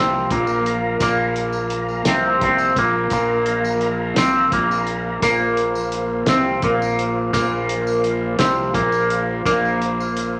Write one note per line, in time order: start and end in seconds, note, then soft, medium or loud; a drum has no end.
0.00 0.28 C2 medium
0.00 0.30 C3 medium
0.00 10.40 F3 medium
0.00 10.40 A#3 medium
0.00 0.30 C4 medium
0.00 10.40 F5 medium
0.00 5.18 A#5 medium
0.30 0.97 A#1 medium
0.30 1.00 A#2 medium
0.30 1.00 A#3 medium
0.30 kick loud
0.30 closed hi-hat medium
0.47 tambourine medium
0.66 closed hi-hat medium
1.00 2.02 A#1 medium
1.00 2.06 A#2 loud
1.00 2.06 A#3 loud
1.00 kick loud
1.00 closed hi-hat medium
1.00 tambourine medium
1.36 closed hi-hat medium
1.36 tambourine soft
1.53 tambourine medium
1.70 closed hi-hat medium
1.88 tambourine soft
2.05 2.39 C2 medium
2.05 2.41 C3 medium
2.05 2.41 C4 medium
2.05 snare loud
2.05 closed hi-hat medium
2.05 tambourine medium
2.41 2.74 C2 medium
2.41 2.76 C3 medium
2.41 2.77 C4 medium
2.41 kick loud
2.41 closed hi-hat medium
2.58 tambourine medium
2.76 3.09 A#1 medium
2.76 3.11 A#2 medium
2.76 3.12 A#3 loud
2.76 kick medium
2.76 closed hi-hat medium
2.76 tambourine soft
3.10 4.13 A#1 medium
3.10 4.16 A#2 medium
3.10 4.17 A#3 loud
3.10 kick medium
3.10 closed hi-hat medium
3.10 tambourine medium
3.46 closed hi-hat medium
3.65 tambourine medium
3.81 closed hi-hat medium
4.16 4.50 C2 medium
4.16 4.51 C3 medium
4.16 4.52 C4 medium
4.16 snare loud
4.16 closed hi-hat medium
4.16 tambourine medium
4.52 5.19 A#1 medium
4.52 5.22 A#2 medium
4.52 5.22 A#3 medium
4.52 kick loud
4.52 closed hi-hat medium
4.71 tambourine medium
4.87 closed hi-hat medium
5.22 6.24 A#1 medium
5.22 6.27 A#2 medium
5.22 6.27 A#3 loud
5.22 10.40 C5 medium
5.22 kick medium
5.22 closed hi-hat medium
5.22 tambourine loud
5.57 closed hi-hat medium
5.75 tambourine medium
5.92 closed hi-hat medium
6.26 6.60 C2 medium
6.26 6.62 C3 medium
6.26 6.63 C4 medium
6.26 snare loud
6.26 closed hi-hat medium
6.26 tambourine loud
6.62 7.29 A#1 medium
6.62 7.32 A#2 medium
6.62 7.32 A#3 medium
6.62 kick loud
6.62 closed hi-hat medium
6.82 tambourine medium
6.99 closed hi-hat medium
7.33 8.35 A#1 medium
7.33 8.38 A#2 loud
7.33 8.38 A#3 loud
7.33 kick loud
7.33 closed hi-hat medium
7.33 tambourine medium
7.69 closed hi-hat medium
7.87 tambourine medium
8.04 closed hi-hat medium
8.39 8.72 C2 medium
8.39 8.73 C3 medium
8.39 8.74 C4 medium
8.39 snare loud
8.39 closed hi-hat medium
8.39 tambourine medium
8.74 9.41 A#1 medium
8.74 9.44 A#2 medium
8.74 9.44 A#3 medium
8.74 kick loud
8.74 closed hi-hat medium
8.92 tambourine medium
9.10 closed hi-hat medium
9.45 10.40 A#1 medium
9.45 10.40 A#2 medium
9.45 10.40 A#3 loud
9.45 kick loud
9.45 closed hi-hat medium
9.45 tambourine medium
9.65 tambourine soft
9.82 closed hi-hat medium
10.00 tambourine medium
10.17 closed hi-hat medium
10.17 tambourine soft